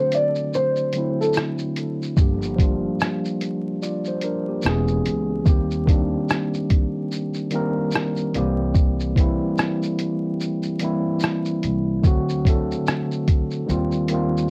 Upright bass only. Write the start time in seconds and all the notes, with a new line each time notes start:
2.17 G1
4.65 E1
5.06 C#2
5.46 D#2
8.35 C2
11.64 C2
12.04 D2
13.69 D#2